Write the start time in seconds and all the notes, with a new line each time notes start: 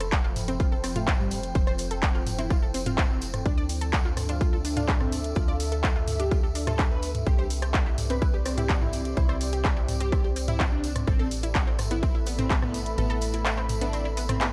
Already playing: F1 F3 C4 F4 A4 C5 E5 B5
0.00 A4 A5, cross-stick, closed hi-hat, tambourine
0.07 G5
0.12 kick, clap, closed hi-hat, tambourine
0.24 F4 F5, tambourine
0.36 mid tom, open hi-hat, tambourine
0.48 C4 C5, closed hi-hat, tambourine
0.60 F4 F5, kick, closed hi-hat, tambourine
0.72 A4 A5, tambourine
0.84 C4 C5, cross-stick, open hi-hat, tambourine
0.96 A3 F4 F5, closed hi-hat, mid tom, tambourine
1.07 C4 C5, kick, clap, closed hi-hat, tambourine
1.20 G3, mid tom, tambourine
1.31 open hi-hat, tambourine
1.43 closed hi-hat, tambourine
1.55 F1 C4 E4 C5 C6, kick, closed hi-hat, tambourine
1.67 C5 C6, cross-stick, tambourine
1.78 open hi-hat, tambourine
1.91 A4 A5, closed hi-hat, tambourine
2.03 kick, clap, closed hi-hat, tambourine
2.15 F4 F5, tambourine
2.27 mid tom, open hi-hat, tambourine
2.38 C4 E4 C5, closed hi-hat, tambourine
2.50 F4 F5, kick, cross-stick, closed hi-hat, tambourine
2.62 A4 A5, tambourine
2.74 C4 C5, open hi-hat, tambourine
2.86 C4 F4 F5, closed hi-hat, mid tom, tambourine
2.98 C4 C5, kick, clap, closed hi-hat, tambourine
3.10 C4, tambourine
3.21 open hi-hat, tambourine
3.34 cross-stick, closed hi-hat, mid tom, tambourine
3.46 D2 D4 D5 E5 D6, kick, closed hi-hat, tambourine
3.58 A4 D5 D6, tambourine
3.69 open hi-hat, tambourine
3.81 A4 A5, closed hi-hat, tambourine
3.93 kick, clap, closed hi-hat, tambourine
4.05 F4 F5, tambourine
4.17 E5, cross-stick, mid tom, open hi-hat, tambourine
4.29 D4 F4 D5, closed hi-hat, tambourine
4.41 F4 F5, kick, closed hi-hat, tambourine
4.53 A4 A5, tambourine
4.65 D4 D5, open hi-hat, tambourine
4.77 D4 F4 F5, closed hi-hat, mid tom, tambourine
4.88 D4 D5, kick, clap, closed hi-hat, tambourine
5.00 C4, cross-stick, mid tom, tambourine
5.12 open hi-hat, tambourine
5.24 closed hi-hat, tambourine
5.35 D2 F4 D5 D6, kick, closed hi-hat, tambourine
5.48 D5 D6, tambourine
5.60 open hi-hat, tambourine
5.72 A4 A5, closed hi-hat, tambourine
5.84 kick, cross-stick, clap, closed hi-hat, tambourine
5.96 F4 F5, tambourine
6.08 mid tom, open hi-hat, tambourine
6.20 D4 G4 D5, closed hi-hat, tambourine
6.31 F4 F5, kick, closed hi-hat, tambourine
6.43 A4 A5, tambourine
6.55 D4 D5, open hi-hat, tambourine
6.67 F4 A4 F5, cross-stick, closed hi-hat, mid tom, tambourine
6.79 D4 D5, kick, clap, closed hi-hat, tambourine
6.91 B4, tambourine
7.02 open hi-hat, tambourine
7.15 closed hi-hat, mid tom, tambourine
7.26 C2 C4 G4 C5 D5 C6, kick, closed hi-hat, tambourine
7.38 C5 D5 C6, tambourine
7.50 open hi-hat, tambourine
7.62 G4 G5, cross-stick, closed hi-hat, tambourine
7.74 kick, clap, closed hi-hat, tambourine
7.86 E4 E5, tambourine
7.98 mid tom, open hi-hat, tambourine
8.10 C4 B4 C5, closed hi-hat, tambourine
8.22 E4 E5, kick, closed hi-hat, tambourine
8.34 G4 G5, tambourine
8.45 C4 C5, cross-stick, open hi-hat, tambourine
8.58 E4 G4 E5, closed hi-hat, mid tom, tambourine
8.69 C4 C5, kick, clap, closed hi-hat, tambourine
8.81 E4, mid tom, tambourine
8.93 open hi-hat, tambourine
9.05 closed hi-hat, tambourine
9.17 C2 E4 C5 C6, kick, closed hi-hat, tambourine
9.29 C5 C6, cross-stick, tambourine
9.41 open hi-hat, tambourine
9.53 G4 G5, closed hi-hat, tambourine
9.65 kick, clap, closed hi-hat, tambourine
9.77 E4 E5, tambourine
9.88 mid tom, open hi-hat, tambourine
10.00 C4 G4 C5, closed hi-hat, tambourine
10.12 E4 E5, kick, cross-stick, closed hi-hat, tambourine
10.24 G4 G5, tambourine
10.36 C4 C5, open hi-hat, tambourine
10.48 E4 E5, closed hi-hat, mid tom, tambourine
10.60 C4 C5, kick, clap, closed hi-hat, tambourine
10.72 D4, tambourine
10.84 open hi-hat, tambourine
10.96 cross-stick, closed hi-hat, mid tom, tambourine
11.07 A1 A3 C4 E4 A4 B4 A5, kick, closed hi-hat, tambourine
11.19 A4 A5, tambourine
11.31 E5, open hi-hat, tambourine
11.43 E4 E5, closed hi-hat, tambourine
11.55 kick, clap, closed hi-hat, tambourine
11.67 C4 C5, tambourine
11.77 B5, cross-stick, mid tom, open hi-hat, tambourine
11.91 B3 E4 B4, closed hi-hat, tambourine
12.03 C4 C5, kick, closed hi-hat, tambourine
12.15 E4 E5, tambourine
12.26 B3 B4, open hi-hat, tambourine
12.38 C4 C5, closed hi-hat, mid tom, tambourine
12.50 B3 B4, kick, clap, closed hi-hat, tambourine
12.62 B3, cross-stick, mid tom, tambourine
12.74 open hi-hat, tambourine
12.86 closed hi-hat, tambourine
12.98 A1 B3 A4 C5 A5, closed hi-hat, tambourine
13.10 A4 A5, tambourine
13.21 open hi-hat, tambourine
13.33 E4 E5, closed hi-hat, tambourine
13.46 cross-stick, clap, closed hi-hat, tambourine
13.57 C4 C5, tambourine
13.69 mid tom, open hi-hat, tambourine
13.81 B3 D4 B4, closed hi-hat, tambourine
13.93 C4 C5, closed hi-hat, tambourine
14.05 E4 E5, tambourine
14.17 B3 B4, open hi-hat, tambourine
14.29 C4 C5, cross-stick, closed hi-hat, mid tom, tambourine
14.41 B3 B4, clap, closed hi-hat, tambourine